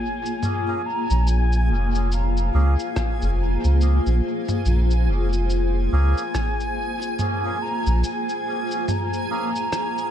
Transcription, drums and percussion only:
0.26 shaker
0.43 mid tom, shaker
1.10 shaker
1.27 shaker
1.53 shaker
1.95 shaker
2.12 shaker
2.37 shaker
2.79 shaker
2.96 kick, cross-stick, shaker
3.22 shaker
3.64 shaker
3.81 shaker
4.06 shaker
4.49 mid tom, shaker
4.66 shaker
4.91 shaker
5.33 shaker
5.50 shaker
6.18 shaker
6.35 kick, cross-stick, shaker
6.60 shaker
7.02 shaker
7.19 mid tom, shaker
7.87 shaker
8.04 shaker
8.29 shaker
8.71 shaker
8.88 mid tom, shaker
9.13 shaker
9.56 shaker
9.73 cross-stick, shaker
9.98 shaker

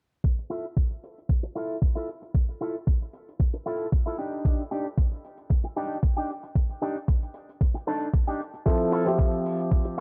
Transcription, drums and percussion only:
0.24 kick, closed hi-hat
0.38 closed hi-hat
0.65 closed hi-hat
0.77 kick, closed hi-hat
0.90 closed hi-hat
1.03 closed hi-hat
1.18 closed hi-hat
1.29 kick, closed hi-hat
1.43 closed hi-hat
1.56 closed hi-hat
1.70 closed hi-hat
1.82 kick, closed hi-hat
1.96 closed hi-hat
2.08 closed hi-hat
2.22 closed hi-hat
2.34 kick, closed hi-hat
2.48 closed hi-hat
2.74 closed hi-hat
2.87 kick, closed hi-hat
3.02 closed hi-hat
3.13 closed hi-hat
3.28 closed hi-hat
3.40 kick, closed hi-hat
3.53 closed hi-hat
3.67 closed hi-hat
3.81 closed hi-hat
3.92 kick, closed hi-hat
4.07 closed hi-hat
4.19 closed hi-hat
4.31 closed hi-hat
4.45 kick, closed hi-hat
4.59 closed hi-hat
4.85 closed hi-hat
4.98 kick, closed hi-hat
5.11 closed hi-hat
5.24 closed hi-hat
5.37 closed hi-hat
5.49 kick, closed hi-hat
5.64 closed hi-hat
5.77 closed hi-hat
5.91 closed hi-hat
6.03 kick, closed hi-hat
6.17 closed hi-hat
6.30 closed hi-hat
6.43 closed hi-hat
6.55 kick, closed hi-hat
6.69 closed hi-hat
6.96 closed hi-hat
7.08 kick, closed hi-hat
7.22 closed hi-hat
7.34 closed hi-hat
7.49 closed hi-hat
7.61 kick, closed hi-hat
7.76 closed hi-hat
7.87 closed hi-hat
8.00 closed hi-hat
8.14 kick, closed hi-hat
8.27 closed hi-hat
8.40 closed hi-hat
8.54 closed hi-hat
8.66 kick, closed hi-hat, cabasa
8.79 closed hi-hat
8.92 open hi-hat, cabasa
9.06 closed hi-hat, cabasa
9.19 kick, closed hi-hat, cabasa
9.33 closed hi-hat
9.46 open hi-hat, cabasa
9.59 closed hi-hat, cabasa
9.71 kick, closed hi-hat, cabasa
9.84 closed hi-hat

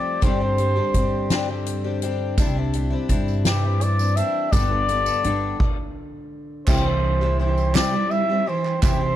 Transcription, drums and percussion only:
0.22 kick, closed hi-hat
0.58 closed hi-hat
0.94 kick, closed hi-hat
1.30 snare, closed hi-hat
1.66 closed hi-hat
2.02 closed hi-hat
2.37 kick, closed hi-hat, tambourine
2.73 closed hi-hat
3.09 kick, closed hi-hat, tambourine
3.28 tambourine
3.45 snare, closed hi-hat, tambourine
3.81 closed hi-hat, tambourine
3.99 tambourine
4.17 closed hi-hat, tambourine
4.53 kick, closed hi-hat, tambourine
4.88 closed hi-hat, tambourine
5.06 tambourine
5.24 closed hi-hat
5.60 kick, crash
6.67 kick, clap, crash, tambourine
7.03 ride
7.22 clap
7.39 ride
7.58 tambourine
7.75 snare, clap, ride, tambourine
8.11 ride, tambourine
8.47 ride
8.65 clap
8.82 kick, clap, ride, tambourine

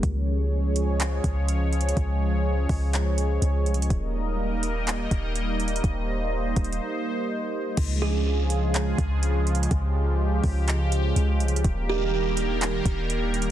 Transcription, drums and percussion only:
0.03 kick, closed hi-hat
0.76 closed hi-hat
1.00 clap, closed hi-hat
1.24 kick, closed hi-hat
1.48 closed hi-hat
1.73 closed hi-hat
1.81 closed hi-hat
1.89 closed hi-hat
1.97 kick, closed hi-hat
2.69 kick, open hi-hat
2.93 clap, closed hi-hat
3.18 closed hi-hat
3.42 closed hi-hat
3.66 closed hi-hat
3.74 closed hi-hat
3.82 closed hi-hat
3.90 kick, closed hi-hat
4.63 closed hi-hat
4.87 clap, closed hi-hat
5.11 kick, closed hi-hat
5.36 closed hi-hat
5.60 closed hi-hat
5.68 closed hi-hat
5.76 closed hi-hat
5.84 kick, closed hi-hat
6.56 kick, closed hi-hat, open hi-hat
6.64 closed hi-hat
6.72 closed hi-hat
7.77 kick, closed hi-hat, crash
8.50 closed hi-hat
8.74 clap, closed hi-hat
8.98 kick, closed hi-hat
9.23 closed hi-hat
9.47 closed hi-hat
9.55 closed hi-hat
9.63 closed hi-hat
9.71 kick, closed hi-hat
10.44 kick, open hi-hat
10.68 clap, closed hi-hat
10.92 closed hi-hat
11.16 closed hi-hat
11.40 closed hi-hat
11.48 closed hi-hat
11.56 closed hi-hat
11.64 kick, closed hi-hat
12.37 closed hi-hat
12.61 clap, closed hi-hat
12.85 kick, closed hi-hat
13.10 closed hi-hat
13.34 closed hi-hat
13.42 closed hi-hat

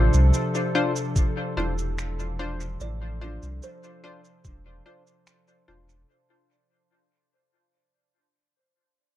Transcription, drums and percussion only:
0.14 cabasa
0.34 cabasa
0.55 cabasa
0.96 cabasa
1.16 kick, cabasa
1.78 cabasa
1.98 finger snap, cabasa
2.19 cabasa
2.60 cabasa
2.81 cabasa
3.43 cabasa
3.63 cabasa
3.84 cabasa
4.25 cabasa
4.45 kick, cabasa
5.07 cabasa
5.27 finger snap, cabasa
5.48 cabasa
5.89 cabasa

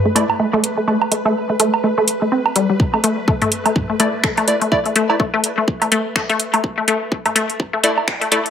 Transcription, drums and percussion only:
0.16 closed hi-hat
0.30 low woodblock
0.64 closed hi-hat
1.02 low woodblock
1.12 closed hi-hat
1.60 closed hi-hat
1.74 low woodblock
2.08 closed hi-hat
2.46 low woodblock
2.56 closed hi-hat
2.80 kick
2.94 low woodblock
3.04 closed hi-hat
3.28 kick
3.42 closed hi-hat, mid tom
3.52 closed hi-hat
3.66 closed hi-hat, low woodblock
3.76 kick, mid tom
4.00 closed hi-hat
4.24 finger snap, kick
4.37 closed hi-hat, low woodblock
4.48 closed hi-hat
4.62 closed hi-hat
4.72 kick
4.86 closed hi-hat
4.96 closed hi-hat
5.10 low woodblock
5.20 kick
5.44 closed hi-hat
5.68 kick
5.82 closed hi-hat, low woodblock
5.92 closed hi-hat
6.16 finger snap, kick
6.30 closed hi-hat
6.40 closed hi-hat
6.54 closed hi-hat, low woodblock
6.64 kick
6.88 closed hi-hat
7.12 kick
7.26 closed hi-hat, mid tom, low woodblock
7.36 closed hi-hat
7.50 closed hi-hat
7.60 kick, mid tom
7.84 closed hi-hat
7.98 low woodblock
8.08 finger snap, kick
8.22 closed hi-hat
8.32 closed hi-hat
8.46 closed hi-hat

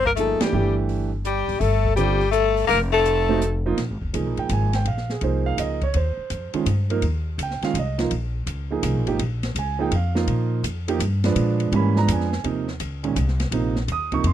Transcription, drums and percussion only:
0.05 kick
0.17 closed hi-hat
0.41 snare, ride
0.89 open hi-hat
1.25 closed hi-hat
1.49 open hi-hat
1.61 open hi-hat
1.85 kick
1.97 closed hi-hat
2.21 open hi-hat
2.33 closed hi-hat
2.57 open hi-hat
2.69 open hi-hat
3.05 closed hi-hat
3.42 closed hi-hat
3.78 snare, ride
4.01 kick
4.14 hi-hat pedal, ride
4.37 ride
4.49 hi-hat pedal, ride
4.73 snare, ride
4.85 ride
4.97 snare
5.10 snare
5.21 ride
5.58 hi-hat pedal, ride
5.81 kick, ride
5.94 ride
6.30 hi-hat pedal, ride
6.54 ride
6.66 hi-hat pedal, ride
6.90 ride
7.02 ride
7.39 hi-hat pedal, ride
7.51 snare
7.62 snare, ride
7.75 hi-hat pedal, ride
7.99 snare, ride
8.11 ride
8.47 hi-hat pedal, ride
8.83 hi-hat pedal, ride
9.07 ride
9.19 ride
9.43 snare, ride
9.56 hi-hat pedal, ride
9.92 ride
10.15 snare
10.28 ride
10.64 hi-hat pedal, ride
10.88 ride
11.00 hi-hat pedal, ride
11.24 snare, ride
11.36 ride
11.60 ride
11.72 ride
11.96 snare
12.08 hi-hat pedal, ride
12.20 snare
12.32 snare
12.44 ride
12.68 snare
12.80 hi-hat pedal, ride
13.04 ride
13.16 hi-hat pedal, ride
13.28 snare
13.40 snare, ride
13.52 ride
13.76 snare
13.88 hi-hat pedal, ride
14.12 kick, ride
14.24 ride

